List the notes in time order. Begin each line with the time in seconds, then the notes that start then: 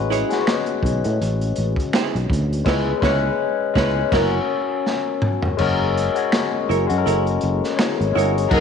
Already playing: A1 G#3 C#4 F#4 B4
0.10 E4 G#4 C#5, closed hi-hat
0.29 G#3 C#4 F#4, snare, closed hi-hat
0.33 B4
0.40 C#5
0.47 finger snap, snare, closed hi-hat
0.66 closed hi-hat
0.83 B1, kick, closed hi-hat
1.04 A2, closed hi-hat
1.21 A1, closed hi-hat
1.41 closed hi-hat
1.56 A1, closed hi-hat
1.76 kick, closed hi-hat
1.93 E4 G#4 C#5, finger snap, snare, closed hi-hat
2.15 B1, closed hi-hat
2.30 D2, kick, closed hi-hat
2.53 closed hi-hat
2.64 C#2 G#3 C#4 E4 B4, kick, snare, crash
2.69 B4 C#5
3.01 C#2 G#3 C#4 E4 B4, kick, snare
3.05 B4 C#5
3.74 C#2 G#3 C#4 E4 B4 C#5, kick, snare
3.78 B4
4.12 F#1 C#4 E4 F#4 A#4 C#5, kick, snare, crash
4.86 snare
5.22 mid tom
5.42 floor tom
5.57 F#1 G#3 C#4 F#4, crash
5.61 A#4
5.97 closed hi-hat
6.14 G#3 C#4 F#4, closed hi-hat
6.19 C#5
6.32 finger snap, snare, closed hi-hat
6.69 F#1 E4 A#4 C#5, closed hi-hat
6.87 F#2 G#3 C#4 F#4, closed hi-hat
6.91 A4
6.98 A#4
7.06 F#1 E4 A#4 C#5, closed hi-hat
7.27 closed hi-hat
7.41 F#1, closed hi-hat
7.64 snare, closed hi-hat
7.77 E4 C#5, finger snap, muted hollow-body jazz guitar stroke, snare, closed hi-hat
8.00 G#1, closed hi-hat
8.13 G1 G#3 C#4 E4 F#4
8.17 G#4 A#4 C#5, closed hi-hat
8.38 closed hi-hat
8.51 F#1 F#3 G#3 A#3 D#4 G#4 A#4 F#5, kick, crash